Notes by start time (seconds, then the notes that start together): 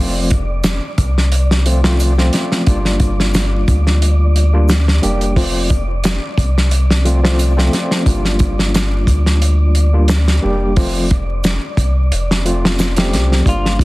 Already playing: F1 F3 A3 C4 D5
0.00 F4
0.30 kick, closed hi-hat
0.64 snare, closed hi-hat, shaker
0.98 C2, kick, closed hi-hat
1.18 snare
1.32 closed hi-hat
1.51 snare
1.65 F3 A3 C4 F4, closed hi-hat
1.84 F3 A3 C4 F4, snare
2.00 closed hi-hat, shaker
2.17 F3 A3 C4 F4, snare
2.33 snare, closed hi-hat
2.52 snare
2.66 G1 G3 A#3 D4 F4, kick, closed hi-hat
2.85 snare
3.00 kick, closed hi-hat
3.20 snare
3.34 snare, closed hi-hat, shaker
3.68 D2, kick, closed hi-hat
3.87 snare
4.02 closed hi-hat
4.36 closed hi-hat
4.53 G3 A#3 D4 F4
4.69 snare, closed hi-hat, shaker
4.88 snare
5.02 F1 G3 A#3 D4 G4, closed hi-hat
5.21 closed hi-hat
5.36 F3 A3 C4 F4, kick, open hi-hat
5.70 kick, closed hi-hat
6.04 snare, closed hi-hat, shaker
6.38 C2, kick, closed hi-hat
6.58 snare
6.71 closed hi-hat
6.90 snare
7.05 F3 A3 C4 F4, closed hi-hat
7.23 F3 A3 C4 F4, snare
7.39 closed hi-hat, shaker
7.57 F3 A3 C4 F4, snare
7.73 snare, closed hi-hat
7.91 snare
8.05 G1 G3 A#3 D4 F4, kick, closed hi-hat
8.25 snare
8.39 kick, closed hi-hat
8.59 snare
8.74 snare, closed hi-hat, shaker
9.07 D2, kick, closed hi-hat
9.26 snare
9.42 closed hi-hat
9.75 closed hi-hat
9.93 G3 A#3 D4 F4
10.08 snare, closed hi-hat, shaker
10.28 snare
10.42 F1 G3 A#3 D4 G4
10.76 F3 A3 C4 F4, kick, open hi-hat
11.11 kick, closed hi-hat
11.44 snare, closed hi-hat, shaker
11.77 C2, kick, closed hi-hat
12.12 F1, closed hi-hat
12.31 snare
12.45 F3 A3 C4 F4, closed hi-hat
12.65 snare
12.79 snare, closed hi-hat, shaker
12.96 F3 A3 C4 G4, snare, closed hi-hat
13.13 C2, snare, closed hi-hat
13.32 snare
13.45 G1 G3 A#3 D4 F4 F5, kick, closed hi-hat
13.66 snare
13.79 kick, closed hi-hat